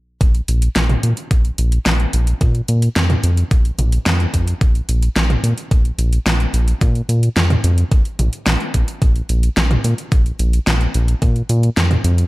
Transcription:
0.21 A#1, kick, closed hi-hat
0.35 closed hi-hat
0.48 A#1, closed hi-hat
0.62 closed hi-hat
0.76 A#1, snare, closed hi-hat
0.89 closed hi-hat, mid tom
1.03 A#2, closed hi-hat
1.17 closed hi-hat
1.31 A#1, kick, closed hi-hat
1.45 closed hi-hat
1.58 A#1, closed hi-hat
1.72 closed hi-hat
1.86 A#1, snare, closed hi-hat
2.00 closed hi-hat
2.13 A#1, closed hi-hat
2.27 closed hi-hat
2.41 A#2, kick, closed hi-hat
2.55 closed hi-hat
2.68 A#2, closed hi-hat
2.82 closed hi-hat
2.96 F2, snare, closed hi-hat
3.10 closed hi-hat, mid tom
3.23 F2, closed hi-hat
3.37 closed hi-hat
3.51 A#1, kick, closed hi-hat
3.65 closed hi-hat
3.78 A#1, closed hi-hat, mid tom
3.92 closed hi-hat
4.06 F2, snare, closed hi-hat
4.20 closed hi-hat
4.34 F2, kick, closed hi-hat
4.48 closed hi-hat
4.61 A#1, kick, closed hi-hat
4.75 closed hi-hat
4.88 A#1, closed hi-hat
5.03 closed hi-hat
5.16 A#1, snare, closed hi-hat
5.30 closed hi-hat, mid tom
5.43 A#2, closed hi-hat
5.58 closed hi-hat
5.71 A#1, kick, closed hi-hat
5.85 closed hi-hat
5.98 A#1, closed hi-hat
6.13 closed hi-hat
6.26 A#1, snare, closed hi-hat
6.40 closed hi-hat
6.53 A#1, closed hi-hat
6.68 closed hi-hat
6.81 A#2, kick, closed hi-hat
6.95 closed hi-hat
7.09 A#2, closed hi-hat
7.23 closed hi-hat
7.36 F2, snare, closed hi-hat
7.50 closed hi-hat, mid tom
7.64 F2, closed hi-hat
7.78 closed hi-hat
7.92 A#1, kick, closed hi-hat
8.05 closed hi-hat
8.19 A#1, closed hi-hat, mid tom
8.33 closed hi-hat
8.46 A#1, snare, closed hi-hat
8.60 closed hi-hat
8.74 A#1, kick, closed hi-hat
8.88 closed hi-hat
9.02 A#1, kick, closed hi-hat
9.16 closed hi-hat
9.29 A#1, closed hi-hat
9.43 closed hi-hat
9.57 A#1, snare, closed hi-hat
9.71 closed hi-hat, mid tom
9.84 A#2, closed hi-hat
9.98 closed hi-hat
10.12 A#1, kick, closed hi-hat
10.26 closed hi-hat
10.39 A#1, closed hi-hat
10.53 closed hi-hat
10.67 A#1, snare, closed hi-hat
10.81 closed hi-hat
10.94 A#1, closed hi-hat
11.08 closed hi-hat
11.22 A#2, kick, closed hi-hat
11.36 closed hi-hat
11.49 A#2, closed hi-hat
11.63 closed hi-hat
11.77 F2, snare, closed hi-hat
11.91 closed hi-hat, mid tom
12.04 F2, closed hi-hat
12.18 closed hi-hat

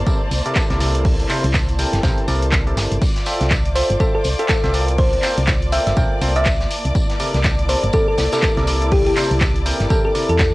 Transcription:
Already playing: A#3 E4 C5 D5 A5
0.07 C3 E4 A4 A#4 D5, kick, tambourine
0.31 C2, open hi-hat, tambourine
0.46 C3 E4 A4 A#4 D5, closed hi-hat
0.55 kick, snare, clap, tambourine
0.70 C2 C3 E4 A4 A#4 D5, snare, closed hi-hat
0.80 C3 E4 A4 A#4 D5, open hi-hat, tambourine
0.95 closed hi-hat
1.05 kick, open hi-hat
1.19 closed hi-hat
1.29 C3 E4 A4 A#4 C5, clap, open hi-hat, tambourine
1.44 C2, closed hi-hat
1.54 kick, snare, clap, tambourine
1.69 closed hi-hat
1.79 C3 E4 A4 A#4 G5, open hi-hat, tambourine
1.93 G1, snare, closed hi-hat
2.03 A#1 C3 E4 A4 A#4 G5, kick, snare, tambourine
2.18 closed hi-hat
2.28 C2 C3 E4 A4 A#4 D5, open hi-hat, tambourine
2.42 closed hi-hat
2.52 kick, snare, clap, tambourine
2.67 C3 E4 A4 A#4 D5, closed hi-hat
2.77 G1, snare, open hi-hat, tambourine
2.92 G1, closed hi-hat
3.02 F4 D5 D6, kick, crash, tambourine
3.16 C5 E5, snare, closed hi-hat
3.26 C4 F4 A4 C5 E5, open hi-hat, tambourine
3.41 C2, snare, closed hi-hat
3.50 kick, snare, clap, tambourine
3.55 A5
3.65 closed hi-hat
3.75 C4 F4 A4 C5 E5, open hi-hat, tambourine
3.90 G1, closed hi-hat
4.00 C4 F4 A4 C5 E5, kick, tambourine
4.15 A4
4.24 C2, open hi-hat, tambourine
4.39 C4 F4 A4 C5 E5, closed hi-hat
4.48 A4, kick, snare, clap, tambourine
4.64 C2 C4 F4 A4 C5 E5, snare, closed hi-hat
4.74 C4 F4 A4 A#4 D5, open hi-hat, tambourine
4.85 A#3, closed hi-hat
4.94 C5 D5, kick, open hi-hat
5.13 closed hi-hat
5.23 C4 F4 A4 A#4 C5, clap, open hi-hat, tambourine
5.38 C2, closed hi-hat
5.47 kick, snare, clap, tambourine
5.62 closed hi-hat
5.72 C4 F4 A4 A#4 E5 G5, open hi-hat, tambourine
5.87 G1 E5, snare, closed hi-hat
5.96 A#1 C4 F4 A4 A#4 G5, kick, tambourine
6.21 C2 C4 F4 A4 A#4 C5, open hi-hat, tambourine
6.36 C4 F4 A4 A#4 D5 E5, closed hi-hat
6.45 kick, snare, clap, tambourine
6.61 snare, closed hi-hat
6.71 E4, open hi-hat, tambourine
6.85 C2, closed hi-hat
6.95 kick, tambourine
7.10 snare, closed hi-hat
7.20 C3 E4 A4 A#4 D5, open hi-hat, tambourine
7.34 C2, snare, closed hi-hat
7.44 kick, snare, clap, tambourine
7.59 closed hi-hat
7.68 C3 E4 A4 A#4 C5 D5, open hi-hat, tambourine
7.83 G1, closed hi-hat
7.93 C3 E4 A4 A#4 D5, kick, tambourine
8.08 A4
8.18 C2, snare, open hi-hat, tambourine
8.32 C3 E4 A4 A#4 D5, snare, closed hi-hat, tambourine
8.42 A4, kick, snare, clap, tambourine
8.57 C2 C3 E4 A4 A#4 D5, snare, closed hi-hat
8.67 C3 E4 A4 A#4 D5, open hi-hat, tambourine
8.82 closed hi-hat
8.91 G4, kick, open hi-hat
9.06 G4, closed hi-hat
9.16 C3 E4 A4 A#4 C5, clap, open hi-hat, tambourine
9.31 C2, closed hi-hat
9.41 kick, snare, clap, tambourine
9.56 closed hi-hat
9.66 C3 E4 A4 A#4 G5, open hi-hat, tambourine
9.80 G1, snare, closed hi-hat
9.90 C3 E4 A4 A#4 G5, kick, tambourine
10.05 A4
10.15 C3 E4 A4 A#4 D5, open hi-hat, tambourine
10.29 E2 A4, closed hi-hat
10.39 kick, snare, clap, tambourine

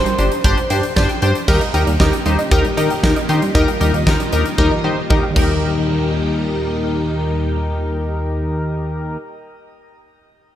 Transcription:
Already playing: C5
0.06 G3, closed hi-hat
0.18 G1 D4 G4 C5 D5, closed hi-hat
0.32 closed hi-hat
0.44 G1 G3 D4 G4 C5, kick, closed hi-hat
0.57 D5, closed hi-hat
0.70 G2 D4 G4 C5 G5, closed hi-hat
0.83 closed hi-hat
0.96 G1 D4 G4 C5 D5, kick, snare
1.09 G5, closed hi-hat
1.22 G2 G3 D4 G4 C5, closed hi-hat
1.35 closed hi-hat
1.48 D#2 A#2 D#3 G3 D#4 G4 A#4, kick, crash
1.61 D#5, closed hi-hat
1.74 D#2 D#4 G4 A#4 G5, closed hi-hat
1.87 D#2 G3, closed hi-hat
2.00 D#2 D#4 G4 A#4 D#5, kick, snare
2.13 G5, closed hi-hat
2.26 D#2 G3 D#4 G4 C5, closed hi-hat
2.39 D#5, closed hi-hat
2.51 D#2 D#4 G4 A#4 G5, kick, closed hi-hat
2.65 G3, closed hi-hat
2.77 D#3 D#4 G4 A#4 D#5, closed hi-hat
2.90 G5, closed hi-hat
3.03 D#2 D#4 G4 A#4, kick, snare
3.16 D#5, closed hi-hat
3.29 D#3 D#4 G4 C5 G5, closed hi-hat
3.42 G3, closed hi-hat
3.55 D#2 D#4 F4 G4 A#4 D#5, kick, closed hi-hat
3.68 G5, closed hi-hat
3.81 D#2 G3 D#4 G4 A#4, closed hi-hat
3.94 D#2 D#5, closed hi-hat
4.07 D#2 D#4 G4 A#4 G5, kick, snare
4.20 G3, closed hi-hat
4.32 D#2 D#4 G4 A#4 D#5, closed hi-hat
4.46 closed hi-hat
4.58 D#2 G3 D#4 G4 A#4, kick, high tom
4.71 D#5, high tom
4.84 D#3 D#4 G4 C5 G5
5.10 D#2 D#4 G4 A#4 D#5, kick
5.23 G5
5.30 D#3 G3
5.36 D#2 A#2 D#3 G3 A#3 D#4 G4 A#4, kick, crash
5.42 G4

